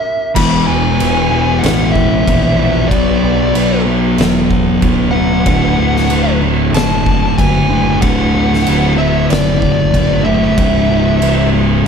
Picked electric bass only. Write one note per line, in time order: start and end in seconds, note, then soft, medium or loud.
0.36 0.65 E1 loud
0.68 0.97 E1 loud
1.01 1.60 E1 medium
1.63 2.23 A1 loud
2.28 2.91 A#1 loud
2.91 3.21 B1 loud
3.23 3.52 B1 loud
3.54 4.14 B1 medium
4.18 4.78 E1 loud
4.83 5.42 D1 loud
5.46 5.76 D1 loud
5.78 6.08 D1 medium
6.09 6.69 D1 medium
6.72 7.33 F#1 loud
7.39 7.98 F#1 loud
8.03 8.32 D1 loud
8.34 8.64 D1 medium
8.68 9.26 D1 medium
9.31 9.90 F#1 loud
9.94 10.53 F#1 loud
10.58 10.87 C#1 loud
10.89 11.19 C#1 medium
11.21 11.81 C#1 medium
11.83 11.88 F#1 loud